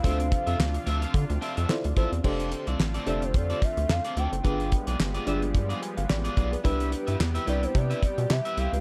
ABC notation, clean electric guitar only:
X:1
M:4/4
L:1/16
Q:"Swing 16ths" 1/4=109
K:Flyd
V:1 name="Clean electric guitar"
[CFAe]2 z [CFAe] z2 [CFAe] [CFAf] z2 [CFAe] [CFAe] z2 [CFAe]2 | [CFAd]2 z [CFAd] z [CFAd] [CFAe] z2 [CFAd]2 z2 [CFAd] [CFAd] z | [B,F_Ad]2 z [B,FAd] z [B,FAd] [B,FAe] z2 [B,FAd]2 z2 [B,FAd] [B,FAd] z | [EGBe]2 z [EGBe] z [EGBe] [EGBg] z2 [EGBe]2 z2 [EGBe] [EGBe] z |]